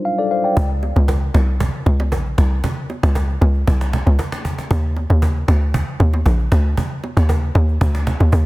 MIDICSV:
0, 0, Header, 1, 5, 480
1, 0, Start_track
1, 0, Tempo, 517241
1, 527, Time_signature, 4, 2, 24, 8
1, 7849, End_track
2, 0, Start_track
2, 0, Title_t, "Tine electric piano"
2, 0, Program_c, 0, 4
2, 0, Control_c, 0, 64, 127
2, 0, Note_on_c, 0, 54, 59
2, 0, Note_on_c, 0, 55, 75
2, 0, Note_on_c, 0, 62, 70
2, 0, Note_on_c, 0, 63, 64
2, 0, Note_on_c, 0, 65, 67
2, 0, Note_on_c, 0, 72, 83
2, 47, Note_on_c, 0, 77, 70
2, 171, Note_on_c, 0, 74, 63
2, 177, Note_on_c, 0, 69, 54
2, 276, Note_off_c, 0, 77, 0
2, 281, Note_off_c, 0, 74, 0
2, 284, Note_off_c, 0, 69, 0
2, 287, Note_on_c, 0, 77, 66
2, 292, Note_off_c, 0, 72, 0
2, 292, Note_on_c, 0, 72, 59
2, 406, Note_off_c, 0, 77, 0
2, 408, Note_off_c, 0, 72, 0
2, 410, Note_on_c, 0, 79, 65
2, 416, Note_on_c, 0, 74, 55
2, 482, Note_off_c, 0, 62, 0
2, 491, Note_off_c, 0, 63, 0
2, 499, Note_off_c, 0, 65, 0
2, 502, Note_off_c, 0, 55, 0
2, 538, Control_c, 0, 64, 0
2, 543, Note_off_c, 0, 54, 0
2, 639, Note_off_c, 0, 79, 0
2, 642, Note_off_c, 0, 74, 0
2, 7849, End_track
3, 0, Start_track
3, 0, Title_t, "Log drum bass"
3, 0, Program_c, 1, 39
3, 527, Note_on_c, 1, 37, 111
3, 855, Note_off_c, 1, 37, 0
3, 891, Note_on_c, 1, 37, 93
3, 1211, Note_off_c, 1, 37, 0
3, 1247, Note_on_c, 1, 36, 92
3, 1575, Note_off_c, 1, 36, 0
3, 1728, Note_on_c, 1, 37, 100
3, 1966, Note_on_c, 1, 34, 96
3, 1980, Note_off_c, 1, 37, 0
3, 2182, Note_off_c, 1, 34, 0
3, 2209, Note_on_c, 1, 36, 90
3, 2424, Note_off_c, 1, 36, 0
3, 2814, Note_on_c, 1, 37, 106
3, 3133, Note_off_c, 1, 37, 0
3, 3168, Note_on_c, 1, 37, 106
3, 3383, Note_off_c, 1, 37, 0
3, 3410, Note_on_c, 1, 36, 101
3, 3737, Note_off_c, 1, 36, 0
3, 3772, Note_on_c, 1, 37, 98
3, 3876, Note_off_c, 1, 37, 0
3, 4368, Note_on_c, 1, 39, 113
3, 4696, Note_off_c, 1, 39, 0
3, 4732, Note_on_c, 1, 39, 94
3, 5051, Note_off_c, 1, 39, 0
3, 5087, Note_on_c, 1, 38, 94
3, 5415, Note_off_c, 1, 38, 0
3, 5567, Note_on_c, 1, 39, 96
3, 5783, Note_off_c, 1, 39, 0
3, 5806, Note_on_c, 1, 34, 92
3, 6022, Note_off_c, 1, 34, 0
3, 6048, Note_on_c, 1, 38, 91
3, 6263, Note_off_c, 1, 38, 0
3, 6651, Note_on_c, 1, 39, 94
3, 6971, Note_off_c, 1, 39, 0
3, 7007, Note_on_c, 1, 39, 102
3, 7223, Note_off_c, 1, 39, 0
3, 7249, Note_on_c, 1, 38, 102
3, 7576, Note_off_c, 1, 38, 0
3, 7612, Note_on_c, 1, 39, 89
3, 7716, Note_off_c, 1, 39, 0
3, 7725, Note_on_c, 1, 39, 96
3, 7838, Note_off_c, 1, 39, 0
3, 7849, End_track
4, 0, Start_track
4, 0, Title_t, "Cajon"
4, 527, Note_on_c, 9, 36, 114
4, 620, Note_off_c, 9, 36, 0
4, 651, Note_on_c, 9, 38, 35
4, 744, Note_off_c, 9, 38, 0
4, 767, Note_on_c, 9, 38, 53
4, 860, Note_off_c, 9, 38, 0
4, 1004, Note_on_c, 9, 36, 104
4, 1097, Note_off_c, 9, 36, 0
4, 1130, Note_on_c, 9, 38, 34
4, 1223, Note_off_c, 9, 38, 0
4, 1248, Note_on_c, 9, 38, 99
4, 1341, Note_off_c, 9, 38, 0
4, 1372, Note_on_c, 9, 38, 30
4, 1465, Note_off_c, 9, 38, 0
4, 1489, Note_on_c, 9, 36, 127
4, 1582, Note_off_c, 9, 36, 0
4, 1613, Note_on_c, 9, 38, 31
4, 1705, Note_off_c, 9, 38, 0
4, 1853, Note_on_c, 9, 38, 34
4, 1946, Note_off_c, 9, 38, 0
4, 1966, Note_on_c, 9, 36, 89
4, 2059, Note_off_c, 9, 36, 0
4, 2095, Note_on_c, 9, 38, 33
4, 2188, Note_off_c, 9, 38, 0
4, 2207, Note_on_c, 9, 38, 57
4, 2209, Note_on_c, 9, 36, 99
4, 2210, Note_off_c, 9, 38, 0
4, 2210, Note_on_c, 9, 38, 105
4, 2302, Note_off_c, 9, 36, 0
4, 2303, Note_off_c, 9, 38, 0
4, 2332, Note_on_c, 9, 38, 32
4, 2425, Note_off_c, 9, 38, 0
4, 2448, Note_on_c, 9, 36, 118
4, 2540, Note_off_c, 9, 36, 0
4, 2571, Note_on_c, 9, 38, 35
4, 2664, Note_off_c, 9, 38, 0
4, 2689, Note_on_c, 9, 38, 53
4, 2782, Note_off_c, 9, 38, 0
4, 2816, Note_on_c, 9, 38, 101
4, 2908, Note_off_c, 9, 38, 0
4, 2926, Note_on_c, 9, 36, 95
4, 3019, Note_off_c, 9, 36, 0
4, 3053, Note_on_c, 9, 38, 35
4, 3146, Note_off_c, 9, 38, 0
4, 3169, Note_on_c, 9, 38, 56
4, 3262, Note_off_c, 9, 38, 0
4, 3294, Note_on_c, 9, 38, 31
4, 3386, Note_off_c, 9, 38, 0
4, 3410, Note_on_c, 9, 36, 127
4, 3503, Note_off_c, 9, 36, 0
4, 3537, Note_on_c, 9, 38, 94
4, 3630, Note_off_c, 9, 38, 0
4, 3650, Note_on_c, 9, 38, 101
4, 3743, Note_off_c, 9, 38, 0
4, 3886, Note_on_c, 9, 36, 90
4, 3979, Note_off_c, 9, 36, 0
4, 4012, Note_on_c, 9, 38, 102
4, 4105, Note_off_c, 9, 38, 0
4, 4125, Note_on_c, 9, 38, 60
4, 4129, Note_on_c, 9, 36, 95
4, 4218, Note_off_c, 9, 38, 0
4, 4221, Note_off_c, 9, 36, 0
4, 4255, Note_on_c, 9, 38, 70
4, 4348, Note_off_c, 9, 38, 0
4, 4368, Note_on_c, 9, 36, 119
4, 4461, Note_off_c, 9, 36, 0
4, 4492, Note_on_c, 9, 38, 34
4, 4585, Note_off_c, 9, 38, 0
4, 4610, Note_on_c, 9, 38, 52
4, 4702, Note_off_c, 9, 38, 0
4, 4846, Note_on_c, 9, 36, 100
4, 4938, Note_off_c, 9, 36, 0
4, 4973, Note_on_c, 9, 38, 33
4, 5066, Note_off_c, 9, 38, 0
4, 5089, Note_on_c, 9, 38, 103
4, 5182, Note_off_c, 9, 38, 0
4, 5212, Note_on_c, 9, 38, 31
4, 5305, Note_off_c, 9, 38, 0
4, 5329, Note_on_c, 9, 36, 127
4, 5422, Note_off_c, 9, 36, 0
4, 5452, Note_on_c, 9, 38, 31
4, 5545, Note_off_c, 9, 38, 0
4, 5571, Note_on_c, 9, 38, 53
4, 5664, Note_off_c, 9, 38, 0
4, 5692, Note_on_c, 9, 38, 34
4, 5785, Note_off_c, 9, 38, 0
4, 5806, Note_on_c, 9, 36, 89
4, 5899, Note_off_c, 9, 36, 0
4, 5933, Note_on_c, 9, 38, 34
4, 6026, Note_off_c, 9, 38, 0
4, 6046, Note_on_c, 9, 38, 62
4, 6048, Note_on_c, 9, 36, 97
4, 6049, Note_off_c, 9, 38, 0
4, 6049, Note_on_c, 9, 38, 107
4, 6141, Note_off_c, 9, 36, 0
4, 6141, Note_off_c, 9, 38, 0
4, 6171, Note_on_c, 9, 38, 32
4, 6264, Note_off_c, 9, 38, 0
4, 6287, Note_on_c, 9, 36, 117
4, 6380, Note_off_c, 9, 36, 0
4, 6410, Note_on_c, 9, 38, 32
4, 6502, Note_off_c, 9, 38, 0
4, 6528, Note_on_c, 9, 38, 57
4, 6621, Note_off_c, 9, 38, 0
4, 6655, Note_on_c, 9, 38, 99
4, 6748, Note_off_c, 9, 38, 0
4, 6765, Note_on_c, 9, 36, 100
4, 6858, Note_off_c, 9, 36, 0
4, 6894, Note_on_c, 9, 38, 33
4, 6987, Note_off_c, 9, 38, 0
4, 7009, Note_on_c, 9, 38, 56
4, 7101, Note_off_c, 9, 38, 0
4, 7133, Note_on_c, 9, 38, 30
4, 7225, Note_off_c, 9, 38, 0
4, 7249, Note_on_c, 9, 36, 127
4, 7342, Note_off_c, 9, 36, 0
4, 7376, Note_on_c, 9, 38, 96
4, 7468, Note_off_c, 9, 38, 0
4, 7489, Note_on_c, 9, 38, 100
4, 7582, Note_off_c, 9, 38, 0
4, 7612, Note_on_c, 9, 38, 34
4, 7705, Note_off_c, 9, 38, 0
4, 7725, Note_on_c, 9, 36, 93
4, 7818, Note_off_c, 9, 36, 0
4, 7849, End_track
5, 0, Start_track
5, 0, Title_t, "Drums"
5, 528, Note_on_c, 9, 64, 64
5, 621, Note_off_c, 9, 64, 0
5, 768, Note_on_c, 9, 61, 51
5, 861, Note_off_c, 9, 61, 0
5, 893, Note_on_c, 9, 61, 61
5, 986, Note_off_c, 9, 61, 0
5, 1009, Note_on_c, 9, 60, 73
5, 1102, Note_off_c, 9, 60, 0
5, 1249, Note_on_c, 9, 60, 54
5, 1249, Note_on_c, 9, 61, 76
5, 1342, Note_off_c, 9, 60, 0
5, 1342, Note_off_c, 9, 61, 0
5, 1490, Note_on_c, 9, 64, 70
5, 1583, Note_off_c, 9, 64, 0
5, 1730, Note_on_c, 9, 64, 74
5, 1822, Note_off_c, 9, 64, 0
5, 1855, Note_on_c, 9, 61, 72
5, 1947, Note_off_c, 9, 61, 0
5, 1970, Note_on_c, 9, 60, 77
5, 2062, Note_off_c, 9, 60, 0
5, 2450, Note_on_c, 9, 64, 67
5, 2543, Note_off_c, 9, 64, 0
5, 2689, Note_on_c, 9, 61, 49
5, 2782, Note_off_c, 9, 61, 0
5, 2816, Note_on_c, 9, 61, 67
5, 2909, Note_off_c, 9, 61, 0
5, 2931, Note_on_c, 9, 60, 77
5, 3024, Note_off_c, 9, 60, 0
5, 3171, Note_on_c, 9, 60, 53
5, 3171, Note_on_c, 9, 61, 73
5, 3264, Note_off_c, 9, 60, 0
5, 3264, Note_off_c, 9, 61, 0
5, 3411, Note_on_c, 9, 64, 70
5, 3503, Note_off_c, 9, 64, 0
5, 3650, Note_on_c, 9, 64, 75
5, 3743, Note_off_c, 9, 64, 0
5, 3774, Note_on_c, 9, 61, 70
5, 3867, Note_off_c, 9, 61, 0
5, 3890, Note_on_c, 9, 60, 75
5, 3983, Note_off_c, 9, 60, 0
5, 4368, Note_on_c, 9, 64, 66
5, 4460, Note_off_c, 9, 64, 0
5, 4607, Note_on_c, 9, 61, 51
5, 4700, Note_off_c, 9, 61, 0
5, 4733, Note_on_c, 9, 61, 66
5, 4826, Note_off_c, 9, 61, 0
5, 4850, Note_on_c, 9, 60, 72
5, 4943, Note_off_c, 9, 60, 0
5, 5088, Note_on_c, 9, 60, 55
5, 5088, Note_on_c, 9, 61, 76
5, 5181, Note_off_c, 9, 60, 0
5, 5181, Note_off_c, 9, 61, 0
5, 5329, Note_on_c, 9, 64, 69
5, 5421, Note_off_c, 9, 64, 0
5, 5569, Note_on_c, 9, 64, 77
5, 5662, Note_off_c, 9, 64, 0
5, 5693, Note_on_c, 9, 61, 73
5, 5786, Note_off_c, 9, 61, 0
5, 5809, Note_on_c, 9, 60, 76
5, 5902, Note_off_c, 9, 60, 0
5, 6288, Note_on_c, 9, 64, 66
5, 6381, Note_off_c, 9, 64, 0
5, 6529, Note_on_c, 9, 61, 50
5, 6622, Note_off_c, 9, 61, 0
5, 6654, Note_on_c, 9, 61, 63
5, 6747, Note_off_c, 9, 61, 0
5, 6770, Note_on_c, 9, 60, 73
5, 6863, Note_off_c, 9, 60, 0
5, 7008, Note_on_c, 9, 61, 76
5, 7101, Note_off_c, 9, 61, 0
5, 7248, Note_on_c, 9, 64, 72
5, 7341, Note_off_c, 9, 64, 0
5, 7488, Note_on_c, 9, 64, 76
5, 7581, Note_off_c, 9, 64, 0
5, 7613, Note_on_c, 9, 61, 75
5, 7706, Note_off_c, 9, 61, 0
5, 7729, Note_on_c, 9, 60, 75
5, 7821, Note_off_c, 9, 60, 0
5, 7849, End_track
0, 0, End_of_file